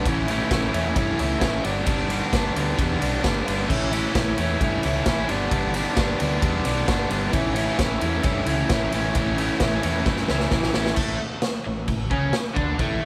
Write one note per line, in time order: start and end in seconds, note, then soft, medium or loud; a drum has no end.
0.06 0.39 A1 loud
0.06 0.27 A2 loud
0.06 0.28 E3 loud
0.06 0.29 A3 loud
0.06 0.30 C#4 loud
0.06 0.30 E4 loud
0.06 kick loud
0.06 ride loud
0.28 0.49 A2 medium
0.28 0.50 E3 medium
0.28 0.51 A3 loud
0.28 0.51 C#4 medium
0.28 0.52 E4 loud
0.28 ride medium
0.50 0.68 A1 medium
0.50 0.70 A2 medium
0.50 0.72 E3 medium
0.50 0.72 A3 medium
0.50 0.73 C#4 medium
0.50 0.73 E4 medium
0.50 kick loud
0.50 snare loud
0.50 ride loud
0.71 0.91 E2 loud
0.71 0.93 A2 medium
0.71 0.94 E3 medium
0.71 0.95 A3 medium
0.71 0.96 C#4 medium
0.71 0.96 E4 medium
0.71 ride medium
0.94 1.13 G2 loud
0.94 1.16 A2 medium
0.94 1.17 E3 medium
0.94 1.18 A3 loud
0.94 1.19 C#4 loud
0.94 1.19 E4 loud
0.94 kick loud
0.94 ride loud
1.17 1.37 C#2 medium
1.17 1.38 A2 medium
1.17 1.39 E3 medium
1.17 1.40 A3 medium
1.17 1.40 C#4 medium
1.17 1.41 E4 loud
1.17 ride medium
1.39 1.59 A1 medium
1.39 1.62 A2 medium
1.39 1.63 E3 medium
1.39 1.64 A3 medium
1.39 1.64 C#4 loud
1.39 1.64 E4 medium
1.39 kick loud
1.39 snare loud
1.39 ride loud
1.63 1.82 G1 medium
1.63 1.84 G2 loud
1.63 1.84 D3 loud
1.63 1.85 G3 loud
1.63 1.86 B3 loud
1.63 1.86 D4 loud
1.63 ride medium
1.85 2.21 G1 loud
1.85 2.07 G2 loud
1.85 2.08 D3 loud
1.85 2.08 G3 loud
1.85 2.10 B3 loud
1.85 2.10 D4 loud
1.85 kick loud
1.85 ride loud
2.08 2.31 G2 medium
2.08 2.32 D3 medium
2.08 2.33 G3 medium
2.08 2.34 B3 medium
2.08 2.35 D4 medium
2.08 ride medium
2.32 2.50 G1 medium
2.32 2.54 G2 medium
2.32 2.54 D3 medium
2.32 2.56 G3 medium
2.32 2.57 B3 medium
2.32 2.57 D4 medium
2.32 kick loud
2.32 snare loud
2.32 ride loud
2.56 2.73 D2 medium
2.56 2.76 G2 medium
2.56 2.77 D3 medium
2.56 2.78 G3 medium
2.56 2.79 B3 medium
2.56 2.80 D4 loud
2.56 ride medium
2.78 2.95 E2 medium
2.78 2.98 G2 loud
2.78 2.99 D3 loud
2.78 3.00 G3 medium
2.78 3.00 B3 loud
2.78 3.02 D4 loud
2.78 kick loud
2.78 ride loud
2.99 3.19 B1 medium
2.99 3.21 G2 medium
2.99 3.22 D3 medium
2.99 3.22 G3 medium
2.99 3.23 B3 medium
2.99 3.24 D4 loud
2.99 ride medium
3.22 3.41 G1 medium
3.22 3.44 G2 medium
3.22 3.45 D3 medium
3.22 3.46 G3 medium
3.22 3.46 B3 medium
3.22 3.47 D4 medium
3.22 kick loud
3.22 snare loud
3.22 ride loud
3.45 3.65 G1 medium
3.45 3.67 G2 medium
3.45 3.67 D3 medium
3.45 3.68 G3 medium
3.45 3.69 B3 medium
3.45 3.69 D4 medium
3.45 ride medium
3.67 4.03 A1 medium
3.67 3.89 A2 loud
3.67 3.90 E3 loud
3.67 3.91 A3 loud
3.67 3.92 C#4 loud
3.67 3.93 E4 loud
3.67 kick loud
3.67 crash loud
3.90 4.12 A2 medium
3.90 4.13 E3 medium
3.90 4.14 A3 loud
3.90 4.15 C#4 medium
3.90 4.15 E4 loud
3.90 ride medium
4.13 4.32 A1 medium
4.13 4.36 A2 medium
4.13 4.37 E3 medium
4.13 4.38 A3 medium
4.13 4.39 C#4 medium
4.13 4.39 E4 medium
4.13 kick loud
4.13 snare loud
4.13 ride loud
4.38 4.55 E2 loud
4.38 4.58 A2 medium
4.38 4.60 E3 medium
4.38 4.60 A3 medium
4.38 4.61 C#4 medium
4.38 4.62 E4 medium
4.38 ride medium
4.60 4.78 G2 loud
4.60 4.83 A2 medium
4.60 4.83 E3 loud
4.60 4.85 A3 loud
4.60 4.85 C#4 loud
4.60 4.86 E4 loud
4.60 kick loud
4.60 ride loud
4.83 5.01 C#2 medium
4.83 5.05 A2 medium
4.83 5.06 E3 medium
4.83 5.06 A3 medium
4.83 5.07 C#4 loud
4.83 5.09 E4 medium
4.83 ride medium
5.06 5.23 A1 medium
5.06 5.27 A2 medium
5.06 5.28 E3 medium
5.06 5.28 A3 medium
5.06 5.29 C#4 medium
5.06 kick loud
5.06 snare loud
5.06 ride loud
5.10 5.30 E4 loud
5.28 5.46 G1 medium
5.28 5.49 G2 loud
5.28 5.50 D3 loud
5.28 5.51 G3 loud
5.28 5.52 B3 loud
5.28 5.52 D4 loud
5.28 ride medium
5.50 5.85 G1 loud
5.50 5.72 G2 loud
5.50 5.73 D3 loud
5.50 5.74 G3 loud
5.50 5.75 B3 loud
5.50 5.75 D4 loud
5.50 kick loud
5.50 ride loud
5.74 5.95 G2 medium
5.74 5.96 D3 loud
5.74 5.97 G3 medium
5.74 5.98 B3 medium
5.74 5.98 D4 medium
5.74 ride medium
5.97 6.14 G1 medium
5.97 6.18 G2 medium
5.97 6.19 D3 medium
5.97 6.20 G3 medium
5.97 6.20 B3 medium
5.97 6.21 D4 medium
5.97 kick loud
5.97 snare loud
5.97 ride loud
6.19 6.37 D2 medium
6.19 6.40 G2 medium
6.19 6.41 D3 medium
6.19 6.41 G3 medium
6.19 6.42 B3 medium
6.19 6.43 D4 medium
6.19 ride medium
6.41 6.59 E2 loud
6.41 6.63 G2 medium
6.41 6.64 D3 loud
6.41 6.65 G3 medium
6.41 6.66 B3 loud
6.41 6.66 D4 loud
6.41 kick loud
6.41 ride loud
6.65 6.82 B1 loud
6.65 6.85 G2 medium
6.65 6.86 D3 medium
6.65 6.87 G3 medium
6.65 6.88 B3 loud
6.65 6.88 D4 loud
6.65 ride medium
6.86 7.05 G1 medium
6.86 7.08 G2 medium
6.86 7.09 D3 medium
6.86 7.10 G3 medium
6.86 7.10 B3 medium
6.86 7.12 D4 loud
6.86 kick loud
6.86 snare loud
6.86 ride loud
7.09 7.28 G1 medium
7.09 7.31 G2 medium
7.09 7.32 D3 medium
7.09 7.32 G3 medium
7.09 7.33 B3 loud
7.09 7.33 D4 medium
7.09 ride medium
7.31 7.67 A1 loud
7.31 7.53 A2 loud
7.31 7.54 E3 loud
7.31 7.55 A3 loud
7.31 7.56 C#4 loud
7.31 7.56 E4 loud
7.31 kick loud
7.31 ride loud
7.53 7.76 A2 medium
7.53 7.77 E3 medium
7.53 7.78 A3 medium
7.53 7.78 C#4 loud
7.53 7.79 E4 loud
7.53 ride medium
7.76 7.96 A1 medium
7.76 7.98 A2 medium
7.76 8.00 E3 medium
7.76 8.01 A3 loud
7.76 8.01 C#4 medium
7.76 8.02 E4 medium
7.76 kick loud
7.76 snare loud
7.76 ride loud
7.99 8.18 E2 loud
7.99 8.21 A2 medium
7.99 8.23 E3 medium
7.99 8.23 A3 loud
7.99 8.24 C#4 loud
7.99 8.24 E4 medium
7.99 ride medium
8.22 8.41 G2 loud
8.22 8.45 A2 loud
8.22 8.46 E3 loud
8.22 8.47 A3 loud
8.22 8.47 C#4 loud
8.22 8.48 E4 loud
8.22 kick loud
8.22 ride loud
8.45 8.64 C#2 medium
8.45 8.69 A2 medium
8.45 8.69 E3 medium
8.45 8.70 A3 medium
8.45 8.71 C#4 medium
8.45 8.72 E4 medium
8.45 ride medium
8.69 8.87 A1 medium
8.69 8.91 A2 medium
8.69 8.92 E3 loud
8.69 8.93 A3 medium
8.69 8.94 C#4 loud
8.69 8.94 E4 medium
8.69 kick loud
8.69 snare loud
8.69 ride loud
8.92 9.10 A1 medium
8.92 9.13 A2 loud
8.92 9.14 E3 loud
8.92 9.15 A3 loud
8.92 9.16 C#4 loud
8.92 9.17 E4 loud
8.92 ride medium
9.14 9.49 A1 loud
9.14 9.36 A2 loud
9.14 9.37 E3 loud
9.14 9.37 A3 loud
9.14 9.38 C#4 loud
9.14 9.39 E4 loud
9.14 kick loud
9.14 ride loud
9.37 9.59 A2 medium
9.37 9.60 E3 medium
9.37 9.61 A3 medium
9.37 9.61 C#4 loud
9.37 9.62 E4 loud
9.37 ride medium
9.60 9.78 A1 medium
9.60 9.81 A2 medium
9.60 9.82 E3 medium
9.60 9.83 A3 medium
9.60 9.84 C#4 medium
9.60 9.84 E4 medium
9.60 kick loud
9.60 snare loud
9.60 ride loud
9.83 10.01 E2 loud
9.83 10.04 A2 medium
9.83 10.05 E3 medium
9.83 10.05 A3 medium
9.83 10.06 C#4 medium
9.83 10.07 E4 medium
9.83 ride medium
10.06 10.23 G2 medium
10.06 10.27 A2 loud
10.06 10.28 E3 loud
10.06 10.29 A3 loud
10.06 10.29 C#4 loud
10.06 10.31 E4 loud
10.06 kick loud
10.06 snare medium
10.17 snare medium
10.28 10.46 C#2 medium
10.28 10.49 A2 medium
10.28 10.50 E3 medium
10.28 10.51 A3 medium
10.28 10.52 C#4 medium
10.28 10.52 E4 medium
10.28 snare medium
10.40 snare medium
10.50 10.69 A1 medium
10.50 10.72 A2 medium
10.50 10.73 E3 medium
10.50 10.74 A3 medium
10.50 10.75 C#4 medium
10.50 10.75 E4 loud
10.50 kick loud
10.50 snare medium
10.63 snare medium
10.73 10.92 A1 medium
10.73 10.93 A2 medium
10.73 10.94 E3 medium
10.73 10.95 A3 medium
10.73 10.96 C#4 loud
10.73 10.97 E4 loud
10.73 snare loud
10.86 snare medium
10.95 11.19 A1 medium
10.95 11.18 A2 loud
10.95 11.19 A3 loud
10.95 kick loud
10.95 crash loud
10.95 crash medium
11.20 muted overdriven electric guitar stroke medium
11.20 muted picked electric bass stroke soft
11.42 snare loud
11.42 crash medium
11.66 11.88 A1 medium
11.66 11.84 A2 medium
11.88 12.10 A1 medium
11.88 12.07 A2 medium
11.88 kick medium
11.88 crash medium
12.11 12.33 C#2 medium
12.11 12.33 C#3 medium
12.11 12.34 C#4 loud
12.11 kick loud
12.33 muted overdriven electric guitar stroke medium
12.33 muted picked electric bass stroke soft
12.33 snare loud
12.33 crash medium
12.55 12.78 D2 medium
12.55 12.78 D3 medium
12.55 12.79 D4 medium
12.55 kick loud
12.79 13.01 A1 medium
12.79 13.01 A2 loud
12.79 13.03 A3 loud
12.79 kick loud
12.79 crash medium